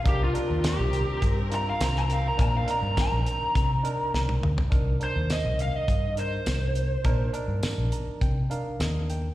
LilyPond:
<<
  \new Staff \with { instrumentName = "Lead electric guitar" } { \time 4/4 \key c \minor \tempo 4 = 103 g'16 f'8. g'4 r8 bes''16 f''16 bes''16 bes''16 f''16 bes''16 | bes''16 f''16 bes''8 bes''2 r4 | r8 c''8 ees''8 f''16 ees''8. c''4.~ | c''8 r2. r8 | }
  \new Staff \with { instrumentName = "String section" } { \time 4/4 \key c \minor <c' bes'>1~ | <c' bes'>1 | r1 | r1 | }
  \new Staff \with { instrumentName = "Tine electric piano" } { \time 4/4 \key c \minor << { r1 | r1 | r1 | r4. bes''8 g''8 f''8 ees''8 g''8 | } \\ { <d' ees' bes'>8 <d' ees' bes'>4.~ <d' ees' bes'>16 r16 <d' ees' f'>4. | <d' ees' bes'>8 <d' ees' bes'>4.~ <d' ees' bes'>16 r16 <d' ees' bes'>4. | <d' ees' bes'>8 <d' ees' bes'>4.~ <d' ees' bes'>16 r16 <d' ees' bes'>4. | <d' ees' bes'>8 <d' ees' bes'>4.~ <d' ees' bes'>16 r16 <d' ees' bes'>4. | } >> }
  \new Staff \with { instrumentName = "Fingered electric bass" } { \clef bass \time 4/4 \key c \minor c,8 r16 ees,8 c,8 r16 g,4 c,4 | bes,8 r16 g,16 r16 bes,,16 r8 c8 r8 c,8 d,16 c,16 | c,8 r16 ees,8 c,8 r16 g,4 c,4 | bes,8 r16 g,16 r16 bes,,16 r8 c8 r8 ees,4 | }
  \new DrumStaff \with { instrumentName = "Drums" } \drummode { \time 4/4 <hh bd>8 hh8 <hh sn tamb>8 hh8 <hh bd>8 hh8 <hh sn tamb>16 sn16 hh8 | <hh bd>8 hh8 <hh bd sn tamb>8 hh8 <hh bd>8 hh8 sn16 tommh16 toml16 tomfh16 | <hh bd>8 hh8 <hh sn tamb>8 hh8 <hh bd>8 hh8 <hh sn tamb>8 hh8 | <hh bd>8 hh8 <hh sn tamb>8 hh8 <hh bd>8 hh8 <hh sn tamb>8 hh8 | }
>>